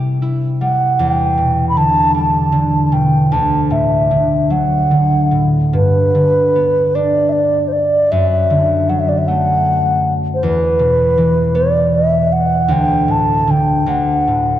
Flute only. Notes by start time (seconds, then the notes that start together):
0.62 F#5
1.01 G5
1.69 B5
1.77 A5
2.16 A5
2.86 A5
2.93 G5
3.32 A5
3.71 E5
4.51 F#5
5.75 B4
6.95 D5
7.29 D5 E5
7.68 C5
7.73 D5
8.11 E5
8.89 F#5
8.99 E5
9.09 D5
9.18 E5
9.27 F#5
10.34 C5
10.43 B4
11.56 D5
11.95 E5
12.32 F#5
12.72 G5
13.11 A5
13.50 G5
13.89 F#5